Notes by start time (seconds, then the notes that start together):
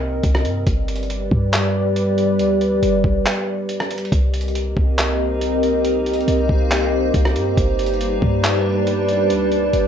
Already playing: C2 C3 C4 A#4 D#5
0.23 C2, kick, closed hi-hat
0.35 cross-stick
0.45 G2, closed hi-hat
0.67 G1 G3 G4 B4 D5, kick, closed hi-hat
0.88 closed hi-hat
0.96 closed hi-hat
1.03 closed hi-hat
1.10 closed hi-hat
1.31 G2, kick
1.53 clap, closed hi-hat
1.96 closed hi-hat
2.18 closed hi-hat
2.39 D2, closed hi-hat
2.61 closed hi-hat
2.83 G1, closed hi-hat
3.04 G1, kick
3.26 clap, closed hi-hat
3.69 closed hi-hat
3.80 cross-stick
3.91 closed hi-hat
3.98 closed hi-hat
4.05 closed hi-hat
4.12 C2 A#3 C4 D#4 G4 A#4 C5 D#5, kick, closed hi-hat
4.34 closed hi-hat
4.41 closed hi-hat
4.48 closed hi-hat
4.55 closed hi-hat
4.77 C2, kick
4.98 clap, closed hi-hat
5.41 closed hi-hat
5.63 closed hi-hat
5.85 closed hi-hat
6.06 closed hi-hat
6.13 closed hi-hat
6.21 closed hi-hat
6.28 C2, closed hi-hat
6.49 C2, kick
6.71 clap, closed hi-hat
7.14 C2, kick, closed hi-hat
7.25 cross-stick
7.36 G2, closed hi-hat
7.57 G1 G3 D4 B4 D5, kick, closed hi-hat
7.79 closed hi-hat
7.86 closed hi-hat
7.93 closed hi-hat
8.01 closed hi-hat
8.22 G2, kick
8.44 clap, closed hi-hat
8.87 closed hi-hat
9.09 closed hi-hat
9.30 D2, closed hi-hat
9.52 closed hi-hat
9.73 G1, closed hi-hat